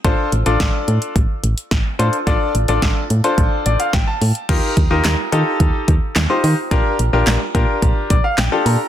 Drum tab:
CC |----------------|----------------|x---------------|----------------|
HH |x-xxx-xxx-xxx-xx|x-xxx-xxx-xxx-ox|x-x-x-x-x-x-x-o-|x-x-x-x-x-x-x-o-|
CP |----------------|----------------|----x-------x---|----x-------x---|
SD |----o-------o---|----o-------o---|----o-------o---|----o-------o---|
BD |o---o---o---o---|o---o---o---o---|o-o-----o-o-----|o-----o-o-o-----|